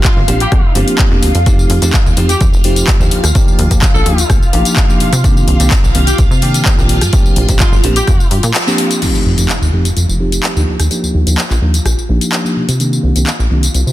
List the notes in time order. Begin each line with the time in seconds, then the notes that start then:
Already playing: F4 F5
0.04 F4, kick, clap, closed hi-hat
0.17 G1
0.28 A#1 F3 A#3 C4 D4 G4, open hi-hat
0.40 G4, closed hi-hat
0.52 F2, kick, cross-stick, closed hi-hat
0.64 G1
0.75 G1 F3 A#3 C4 D4 G4, open hi-hat
0.88 closed hi-hat
0.99 kick, clap, closed hi-hat
1.11 F2 F3 A#3 C4 D4 G4
1.23 D2, open hi-hat
1.35 F2, closed hi-hat
1.46 F3 A3 C4 D#4 F4 G4 F5, kick, closed hi-hat, tambourine
1.59 tambourine
1.70 F2, open hi-hat
1.82 F2 F3 A3 C4 D#4 G4, closed hi-hat, tambourine
1.93 kick, clap, closed hi-hat, tambourine
2.06 D#2, tambourine
2.17 F2 F3 A3 C4 D#4 G4, open hi-hat
2.29 G4, closed hi-hat, tambourine
2.41 F2, kick, closed hi-hat, tambourine
2.53 F1, tambourine
2.64 F3 A3 C4 D#4 G4, open hi-hat
2.76 closed hi-hat, tambourine
2.87 kick, clap, closed hi-hat, tambourine
3.00 D#2 F3 A#3 D4 D#4 G4, tambourine
3.11 D#2, open hi-hat
3.23 D#2, cross-stick, closed hi-hat, tambourine
3.35 F3 A#3 D4 D#4 G4, kick, closed hi-hat, tambourine
3.47 D#2, tambourine
3.59 D#2, open hi-hat
3.71 D#2 F3 A#3 D4 D#4 G4, kick, closed hi-hat, tambourine
3.82 kick, clap, closed hi-hat, tambourine
3.94 A#1 A4, tambourine
4.06 D#2 F3 A#3 D4 D#4 G4, open hi-hat
4.18 closed hi-hat, tambourine
4.30 A#1, kick, cross-stick, closed hi-hat, tambourine
4.42 A#1, tambourine
4.53 A#1 F3 A#3 D4 D#4 G4, open hi-hat
4.65 closed hi-hat, tambourine
4.76 kick, clap, closed hi-hat
4.89 F3 A#3 D4 D#4 G4, tambourine
5.00 C3, open hi-hat
5.13 C3, closed hi-hat, tambourine
5.24 D#3 A#3 C4 D4 G4, kick, closed hi-hat, tambourine
5.37 tambourine
5.48 C2, open hi-hat
5.60 C2 D#3 A#3 C4 D4 G4, closed hi-hat, tambourine
5.71 kick, clap, closed hi-hat, tambourine
5.84 A#1, tambourine
5.95 C2 D#3 A#3 C4 D4 G4, open hi-hat
6.07 G4, closed hi-hat, tambourine
6.18 C2, kick, closed hi-hat, tambourine
6.31 C3, tambourine
6.42 D#3 A#3 C4 D4 G4, open hi-hat
6.54 closed hi-hat, tambourine
6.65 kick, clap, closed hi-hat, tambourine
6.78 A#1 D#3 A#3 C4 D4 G4, tambourine
6.89 open hi-hat
7.01 G2, cross-stick, closed hi-hat, tambourine
7.13 F3 A#3 C4 D4 G4, kick, closed hi-hat, tambourine
7.25 A#1, tambourine
7.36 A#1, open hi-hat
7.49 A#1 F3 A#3 C4 D4 G4, kick, closed hi-hat, tambourine
7.60 F4, kick, clap, closed hi-hat, tambourine
7.72 G1, tambourine
7.84 A#1 F3 A#3 C4 D4 G4, open hi-hat
7.96 G4, closed hi-hat, tambourine
8.07 F2, kick, cross-stick, closed hi-hat, tambourine
8.20 G2, tambourine
8.31 G2, open hi-hat
8.43 A#2, closed hi-hat, tambourine
8.54 clap, closed hi-hat, tambourine
8.67 F3 A#3 C4 D4 G4, tambourine
8.78 open hi-hat
8.91 closed hi-hat, tambourine
9.02 F3 A3 C4 D#4 F4 F5, closed hi-hat, crash, tambourine, impact
9.15 tambourine
9.26 F2
9.38 F2 F3 A3 C4 D#4 G4, closed hi-hat, tambourine
9.49 clap, closed hi-hat, tambourine
9.62 D#2, tambourine
9.73 F2 F3 A3 C4 D#4 G4
9.85 closed hi-hat, tambourine
9.97 F2, closed hi-hat, tambourine
10.09 F1, tambourine
10.20 F3 A3 C4 D#4 G4
10.32 closed hi-hat, tambourine
10.43 clap, closed hi-hat, tambourine
10.56 D#2 F3 A#3 D4 D#4 G4, tambourine
10.68 D#2
10.79 D#2, cross-stick, closed hi-hat, tambourine
10.91 F3 A#3 D4 D#4 G4, closed hi-hat, tambourine
11.03 D#2, tambourine
11.15 D#2
11.26 D#2 F3 A#3 D4 D#4 G4, closed hi-hat, tambourine
11.38 clap, closed hi-hat, tambourine
11.50 A#1, clap, tambourine
11.61 D#2 F3 A#3 D4 D#4 G4
11.74 closed hi-hat, tambourine
11.85 A#1, cross-stick, closed hi-hat, tambourine
11.98 A#1, tambourine
12.09 A#1 F3 A#3 D4 D#4 G4
12.21 closed hi-hat, tambourine
12.32 clap, closed hi-hat, tambourine
12.44 F3 A#3 D4 D#4 G4, tambourine
12.56 C3
12.68 C3, closed hi-hat, tambourine
12.80 D#3 A#3 C4 D4 G4, closed hi-hat, tambourine
12.93 tambourine
13.03 C2
13.15 C2 D#3 A#3 C4 D4 G4, closed hi-hat, tambourine
13.27 clap, closed hi-hat, tambourine
13.39 A#1, tambourine
13.51 C2 D#3 A#3 C4 D4 G4
13.63 closed hi-hat, tambourine
13.74 C2, closed hi-hat, tambourine
13.87 C3, tambourine